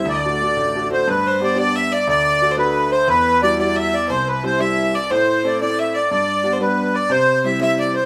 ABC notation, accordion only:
X:1
M:6/8
L:1/8
Q:3/8=119
K:Dmix
V:1 name="Accordion"
d4- d c | B2 d d e d | d3 B2 c | B2 d d e d |
c B c e2 d | c2 d d e d | d3 B2 d | c2 e e d c |]